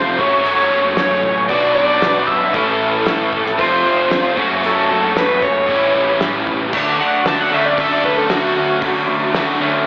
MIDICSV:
0, 0, Header, 1, 6, 480
1, 0, Start_track
1, 0, Key_signature, 2, "major"
1, 0, Tempo, 523104
1, 413, Time_signature, 4, 2, 24, 8
1, 9054, End_track
2, 0, Start_track
2, 0, Title_t, "Analog synth lead"
2, 0, Program_c, 0, 81
2, 0, Note_on_c, 0, 72, 92
2, 193, Note_on_c, 0, 73, 87
2, 207, Note_off_c, 0, 72, 0
2, 417, Note_off_c, 0, 73, 0
2, 423, Note_on_c, 0, 73, 102
2, 864, Note_off_c, 0, 73, 0
2, 895, Note_on_c, 0, 73, 94
2, 1340, Note_off_c, 0, 73, 0
2, 1366, Note_on_c, 0, 74, 106
2, 1592, Note_off_c, 0, 74, 0
2, 1603, Note_on_c, 0, 74, 107
2, 2078, Note_on_c, 0, 76, 103
2, 2092, Note_off_c, 0, 74, 0
2, 2331, Note_on_c, 0, 69, 97
2, 2345, Note_off_c, 0, 76, 0
2, 2802, Note_off_c, 0, 69, 0
2, 2808, Note_on_c, 0, 69, 91
2, 3293, Note_on_c, 0, 72, 101
2, 3307, Note_off_c, 0, 69, 0
2, 4012, Note_off_c, 0, 72, 0
2, 4274, Note_on_c, 0, 69, 88
2, 4749, Note_on_c, 0, 71, 100
2, 4763, Note_off_c, 0, 69, 0
2, 4977, Note_off_c, 0, 71, 0
2, 4982, Note_on_c, 0, 73, 109
2, 5660, Note_off_c, 0, 73, 0
2, 6427, Note_on_c, 0, 78, 98
2, 6653, Note_off_c, 0, 78, 0
2, 6671, Note_on_c, 0, 81, 88
2, 6774, Note_off_c, 0, 81, 0
2, 6796, Note_on_c, 0, 78, 84
2, 6897, Note_off_c, 0, 78, 0
2, 6916, Note_on_c, 0, 76, 82
2, 7017, Note_off_c, 0, 76, 0
2, 7023, Note_on_c, 0, 74, 75
2, 7130, Note_off_c, 0, 74, 0
2, 7156, Note_on_c, 0, 76, 79
2, 7257, Note_off_c, 0, 76, 0
2, 7271, Note_on_c, 0, 74, 75
2, 7374, Note_off_c, 0, 74, 0
2, 7385, Note_on_c, 0, 71, 81
2, 7491, Note_off_c, 0, 71, 0
2, 7499, Note_on_c, 0, 69, 80
2, 7608, Note_off_c, 0, 69, 0
2, 7617, Note_on_c, 0, 66, 105
2, 8546, Note_off_c, 0, 66, 0
2, 9054, End_track
3, 0, Start_track
3, 0, Title_t, "Overdriven electric guitar"
3, 0, Program_c, 1, 29
3, 6666, Note_on_c, 1, 66, 60
3, 6889, Note_on_c, 1, 61, 69
3, 7130, Note_on_c, 1, 69, 74
3, 7365, Note_off_c, 1, 61, 0
3, 7376, Note_on_c, 1, 61, 63
3, 7606, Note_off_c, 1, 66, 0
3, 7617, Note_on_c, 1, 66, 67
3, 7848, Note_off_c, 1, 61, 0
3, 7859, Note_on_c, 1, 61, 61
3, 8332, Note_off_c, 1, 69, 0
3, 8572, Note_off_c, 1, 66, 0
3, 8584, Note_on_c, 1, 66, 63
3, 8809, Note_off_c, 1, 61, 0
3, 8820, Note_on_c, 1, 61, 66
3, 9054, Note_off_c, 1, 61, 0
3, 9054, Note_off_c, 1, 66, 0
3, 9054, End_track
4, 0, Start_track
4, 0, Title_t, "Overdriven electric guitar"
4, 0, Program_c, 2, 29
4, 0, Note_on_c, 2, 53, 80
4, 0, Note_on_c, 2, 57, 80
4, 0, Note_on_c, 2, 60, 84
4, 0, Note_on_c, 2, 65, 95
4, 154, Note_off_c, 2, 53, 0
4, 161, Note_on_c, 2, 54, 82
4, 162, Note_off_c, 2, 60, 0
4, 167, Note_off_c, 2, 65, 0
4, 170, Note_off_c, 2, 57, 0
4, 174, Note_on_c, 2, 57, 94
4, 181, Note_on_c, 2, 61, 96
4, 192, Note_on_c, 2, 66, 106
4, 1352, Note_off_c, 2, 54, 0
4, 1362, Note_off_c, 2, 61, 0
4, 1364, Note_on_c, 2, 47, 90
4, 1367, Note_off_c, 2, 66, 0
4, 1373, Note_off_c, 2, 57, 0
4, 1373, Note_on_c, 2, 54, 88
4, 1377, Note_on_c, 2, 59, 94
4, 1383, Note_on_c, 2, 62, 100
4, 1389, Note_on_c, 2, 66, 97
4, 2313, Note_off_c, 2, 47, 0
4, 2316, Note_on_c, 2, 45, 81
4, 2318, Note_off_c, 2, 54, 0
4, 2320, Note_off_c, 2, 59, 0
4, 2323, Note_off_c, 2, 62, 0
4, 2323, Note_on_c, 2, 52, 89
4, 2326, Note_off_c, 2, 66, 0
4, 2329, Note_on_c, 2, 57, 86
4, 2335, Note_on_c, 2, 61, 88
4, 2340, Note_on_c, 2, 64, 95
4, 3269, Note_off_c, 2, 45, 0
4, 3273, Note_off_c, 2, 52, 0
4, 3279, Note_off_c, 2, 61, 0
4, 3280, Note_on_c, 2, 53, 89
4, 3282, Note_off_c, 2, 64, 0
4, 3290, Note_off_c, 2, 57, 0
4, 3293, Note_on_c, 2, 57, 89
4, 3298, Note_on_c, 2, 60, 96
4, 3309, Note_on_c, 2, 65, 101
4, 3991, Note_off_c, 2, 53, 0
4, 4000, Note_off_c, 2, 60, 0
4, 4006, Note_off_c, 2, 65, 0
4, 4006, Note_on_c, 2, 54, 85
4, 4010, Note_off_c, 2, 57, 0
4, 4014, Note_on_c, 2, 57, 93
4, 4018, Note_on_c, 2, 61, 105
4, 4029, Note_on_c, 2, 66, 93
4, 5194, Note_off_c, 2, 54, 0
4, 5198, Note_off_c, 2, 57, 0
4, 5200, Note_off_c, 2, 61, 0
4, 5200, Note_on_c, 2, 45, 85
4, 5206, Note_off_c, 2, 66, 0
4, 5207, Note_on_c, 2, 52, 91
4, 5216, Note_on_c, 2, 55, 95
4, 5220, Note_on_c, 2, 61, 102
4, 5227, Note_on_c, 2, 64, 91
4, 6152, Note_off_c, 2, 45, 0
4, 6155, Note_off_c, 2, 52, 0
4, 6159, Note_off_c, 2, 55, 0
4, 6162, Note_off_c, 2, 61, 0
4, 6165, Note_off_c, 2, 64, 0
4, 6167, Note_on_c, 2, 50, 90
4, 6175, Note_on_c, 2, 54, 91
4, 6190, Note_on_c, 2, 57, 85
4, 6193, Note_on_c, 2, 62, 92
4, 6896, Note_off_c, 2, 57, 0
4, 6900, Note_off_c, 2, 54, 0
4, 6900, Note_on_c, 2, 57, 69
4, 6904, Note_on_c, 2, 54, 69
4, 6906, Note_off_c, 2, 50, 0
4, 6910, Note_on_c, 2, 50, 61
4, 8078, Note_off_c, 2, 50, 0
4, 8082, Note_off_c, 2, 57, 0
4, 8084, Note_off_c, 2, 54, 0
4, 8089, Note_on_c, 2, 50, 94
4, 8098, Note_on_c, 2, 54, 85
4, 8107, Note_on_c, 2, 57, 91
4, 8797, Note_off_c, 2, 50, 0
4, 8802, Note_off_c, 2, 54, 0
4, 8806, Note_off_c, 2, 57, 0
4, 8816, Note_on_c, 2, 57, 82
4, 8819, Note_on_c, 2, 54, 66
4, 8833, Note_on_c, 2, 50, 72
4, 9054, Note_off_c, 2, 50, 0
4, 9054, Note_off_c, 2, 54, 0
4, 9054, Note_off_c, 2, 57, 0
4, 9054, Note_off_c, 2, 62, 0
4, 9054, End_track
5, 0, Start_track
5, 0, Title_t, "Picked electric bass"
5, 0, Program_c, 3, 34
5, 0, Note_on_c, 3, 29, 85
5, 164, Note_off_c, 3, 29, 0
5, 177, Note_on_c, 3, 30, 76
5, 397, Note_off_c, 3, 30, 0
5, 403, Note_on_c, 3, 30, 82
5, 637, Note_off_c, 3, 30, 0
5, 645, Note_on_c, 3, 30, 80
5, 878, Note_off_c, 3, 30, 0
5, 887, Note_on_c, 3, 30, 85
5, 1119, Note_off_c, 3, 30, 0
5, 1134, Note_on_c, 3, 33, 81
5, 1363, Note_off_c, 3, 33, 0
5, 1374, Note_on_c, 3, 35, 83
5, 1602, Note_off_c, 3, 35, 0
5, 1612, Note_on_c, 3, 35, 82
5, 1842, Note_off_c, 3, 35, 0
5, 1858, Note_on_c, 3, 35, 81
5, 2085, Note_off_c, 3, 35, 0
5, 2092, Note_on_c, 3, 35, 82
5, 2322, Note_off_c, 3, 35, 0
5, 2335, Note_on_c, 3, 33, 90
5, 2793, Note_off_c, 3, 33, 0
5, 2813, Note_on_c, 3, 33, 82
5, 3042, Note_off_c, 3, 33, 0
5, 3055, Note_on_c, 3, 33, 81
5, 3283, Note_off_c, 3, 33, 0
5, 3291, Note_on_c, 3, 29, 79
5, 3521, Note_off_c, 3, 29, 0
5, 3528, Note_on_c, 3, 29, 86
5, 3759, Note_off_c, 3, 29, 0
5, 3772, Note_on_c, 3, 29, 84
5, 4001, Note_off_c, 3, 29, 0
5, 4014, Note_on_c, 3, 30, 81
5, 4242, Note_off_c, 3, 30, 0
5, 4259, Note_on_c, 3, 30, 85
5, 4485, Note_off_c, 3, 30, 0
5, 4502, Note_on_c, 3, 30, 90
5, 4727, Note_off_c, 3, 30, 0
5, 4740, Note_on_c, 3, 30, 80
5, 4965, Note_off_c, 3, 30, 0
5, 4979, Note_on_c, 3, 30, 84
5, 5205, Note_off_c, 3, 30, 0
5, 5219, Note_on_c, 3, 33, 81
5, 5445, Note_off_c, 3, 33, 0
5, 5453, Note_on_c, 3, 33, 86
5, 5682, Note_off_c, 3, 33, 0
5, 5692, Note_on_c, 3, 33, 84
5, 5921, Note_off_c, 3, 33, 0
5, 5939, Note_on_c, 3, 33, 87
5, 6165, Note_off_c, 3, 33, 0
5, 6178, Note_on_c, 3, 38, 89
5, 6404, Note_off_c, 3, 38, 0
5, 6412, Note_on_c, 3, 38, 87
5, 6641, Note_off_c, 3, 38, 0
5, 6657, Note_on_c, 3, 38, 76
5, 6883, Note_off_c, 3, 38, 0
5, 6888, Note_on_c, 3, 38, 79
5, 7119, Note_off_c, 3, 38, 0
5, 7138, Note_on_c, 3, 38, 85
5, 7364, Note_off_c, 3, 38, 0
5, 7375, Note_on_c, 3, 38, 82
5, 7602, Note_off_c, 3, 38, 0
5, 7610, Note_on_c, 3, 38, 84
5, 7840, Note_off_c, 3, 38, 0
5, 7850, Note_on_c, 3, 38, 81
5, 8080, Note_off_c, 3, 38, 0
5, 8094, Note_on_c, 3, 38, 89
5, 8322, Note_off_c, 3, 38, 0
5, 8339, Note_on_c, 3, 38, 81
5, 8561, Note_off_c, 3, 38, 0
5, 8567, Note_on_c, 3, 38, 84
5, 8798, Note_off_c, 3, 38, 0
5, 8808, Note_on_c, 3, 38, 80
5, 9039, Note_off_c, 3, 38, 0
5, 9054, End_track
6, 0, Start_track
6, 0, Title_t, "Drums"
6, 173, Note_on_c, 9, 36, 102
6, 265, Note_off_c, 9, 36, 0
6, 411, Note_on_c, 9, 46, 49
6, 502, Note_off_c, 9, 46, 0
6, 888, Note_on_c, 9, 46, 46
6, 890, Note_on_c, 9, 38, 106
6, 980, Note_off_c, 9, 46, 0
6, 982, Note_off_c, 9, 38, 0
6, 1132, Note_on_c, 9, 36, 87
6, 1224, Note_off_c, 9, 36, 0
6, 1369, Note_on_c, 9, 46, 50
6, 1371, Note_on_c, 9, 36, 90
6, 1460, Note_off_c, 9, 46, 0
6, 1463, Note_off_c, 9, 36, 0
6, 1854, Note_on_c, 9, 46, 51
6, 1855, Note_on_c, 9, 38, 111
6, 1945, Note_off_c, 9, 46, 0
6, 1947, Note_off_c, 9, 38, 0
6, 2091, Note_on_c, 9, 36, 81
6, 2183, Note_off_c, 9, 36, 0
6, 2332, Note_on_c, 9, 36, 107
6, 2332, Note_on_c, 9, 46, 52
6, 2424, Note_off_c, 9, 36, 0
6, 2424, Note_off_c, 9, 46, 0
6, 2811, Note_on_c, 9, 46, 52
6, 2813, Note_on_c, 9, 38, 104
6, 2903, Note_off_c, 9, 46, 0
6, 2905, Note_off_c, 9, 38, 0
6, 3054, Note_on_c, 9, 36, 79
6, 3145, Note_off_c, 9, 36, 0
6, 3176, Note_on_c, 9, 38, 32
6, 3268, Note_off_c, 9, 38, 0
6, 3294, Note_on_c, 9, 36, 87
6, 3294, Note_on_c, 9, 46, 52
6, 3385, Note_off_c, 9, 36, 0
6, 3386, Note_off_c, 9, 46, 0
6, 3773, Note_on_c, 9, 46, 50
6, 3775, Note_on_c, 9, 38, 105
6, 3865, Note_off_c, 9, 46, 0
6, 3867, Note_off_c, 9, 38, 0
6, 4014, Note_on_c, 9, 36, 100
6, 4106, Note_off_c, 9, 36, 0
6, 4254, Note_on_c, 9, 46, 48
6, 4345, Note_off_c, 9, 46, 0
6, 4739, Note_on_c, 9, 46, 49
6, 4741, Note_on_c, 9, 38, 108
6, 4831, Note_off_c, 9, 46, 0
6, 4832, Note_off_c, 9, 38, 0
6, 4978, Note_on_c, 9, 36, 83
6, 5070, Note_off_c, 9, 36, 0
6, 5219, Note_on_c, 9, 36, 86
6, 5223, Note_on_c, 9, 46, 48
6, 5311, Note_off_c, 9, 36, 0
6, 5315, Note_off_c, 9, 46, 0
6, 5695, Note_on_c, 9, 46, 51
6, 5697, Note_on_c, 9, 38, 114
6, 5787, Note_off_c, 9, 46, 0
6, 5789, Note_off_c, 9, 38, 0
6, 5938, Note_on_c, 9, 36, 84
6, 6029, Note_off_c, 9, 36, 0
6, 6175, Note_on_c, 9, 49, 96
6, 6178, Note_on_c, 9, 36, 108
6, 6266, Note_off_c, 9, 49, 0
6, 6270, Note_off_c, 9, 36, 0
6, 6658, Note_on_c, 9, 46, 55
6, 6660, Note_on_c, 9, 38, 100
6, 6750, Note_off_c, 9, 46, 0
6, 6751, Note_off_c, 9, 38, 0
6, 7136, Note_on_c, 9, 46, 56
6, 7138, Note_on_c, 9, 36, 114
6, 7227, Note_off_c, 9, 46, 0
6, 7230, Note_off_c, 9, 36, 0
6, 7376, Note_on_c, 9, 36, 79
6, 7468, Note_off_c, 9, 36, 0
6, 7613, Note_on_c, 9, 46, 53
6, 7615, Note_on_c, 9, 38, 111
6, 7705, Note_off_c, 9, 46, 0
6, 7707, Note_off_c, 9, 38, 0
6, 8093, Note_on_c, 9, 46, 53
6, 8095, Note_on_c, 9, 36, 109
6, 8184, Note_off_c, 9, 46, 0
6, 8186, Note_off_c, 9, 36, 0
6, 8573, Note_on_c, 9, 46, 48
6, 8575, Note_on_c, 9, 38, 105
6, 8665, Note_off_c, 9, 46, 0
6, 8667, Note_off_c, 9, 38, 0
6, 9054, End_track
0, 0, End_of_file